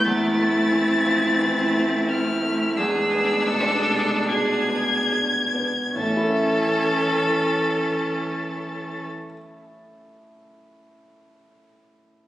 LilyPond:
<<
  \new Staff \with { instrumentName = "Violin" } { \time 4/4 \key e \phrygian \tempo 4 = 38 a'''4. f'''8 e'''4 gis'''4 | a'''1 | }
  \new Staff \with { instrumentName = "Cello" } { \time 4/4 \key e \phrygian e'2 gis'8 a'8 gis'8 r8 | e1 | }
  \new Staff \with { instrumentName = "Violin" } { \time 4/4 \key e \phrygian c'2 d'2 | a'1 | }
  \new Staff \with { instrumentName = "Grand piano" } { \time 4/4 \key e \phrygian e,16 a16 e16 f16 e16 a16 c'16 a16 e,16 b16 b,16 c16 b,16 b16 d'16 b16 | <a, a cis' e' a' e''>1 | }
  \new Staff \with { instrumentName = "Viola" } { \time 4/4 \key e \phrygian a2 gis2 | cis'1 | }
>>